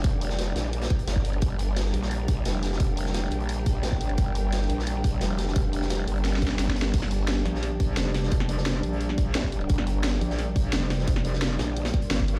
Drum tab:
CC |------------------------------------------------|------------------------------------------------|------------------------------------------------|------------------------------------------------|
HH |x-----x-----x-----x-----x--x--x--x--x-----x--x--|x-----x-----x-----x-----x-----x-----x-----x-----|x-----x-----x-----x--x--x-----x-----x-----x--x--|x-----x-----x-----x-----x-----x-----x-----x-----|
SD |---------o--o-----o--------o--------o-----------|------------o--o-----o--------------o-----o--o--|---------o--o-----------------------o-----------|------------o--o-----o--------------o-----o--o--|
BD |o-----------------------------o--------o--------|o-----------------------------o-----------------|o-----------------------------o--------o--------|o-----------------------------o-----------------|

CC |------------------------------------------------|x-----------------------------------------------|------------------------------------------------|------------------------------------------------|
HH |x-----x-----x-----x--x--x--x--x--x--x-----x--x--|x-----x-----x-----x-----x-----x-----x-----x-----|x-----x-----x-----x--x--x-----x-----x-----x--x--|x-----x-----x-----x-----x-----x-----x-----x-----|
SD |---------o--o-----------o---o---o---o---o---o---|---o--------o--o--o--o--o-----------o-----o--o--|---o-----o--o--------------o--------o-----------|---o--------o--o-----o--o-----------o-----o--o--|
BD |o-----------------------------o--------o--------|o-----------------------------o-----------------|o-----------------------------o--------o--------|o-----------------------------o-----------------|

CC |------------------------------------------------|
HH |x-----x-----x-----x-----x--x--x--x--x-----x-----|
SD |---o-----o--o-----o--------o--------o-----------|
BD |o-----------------------------o--------o--------|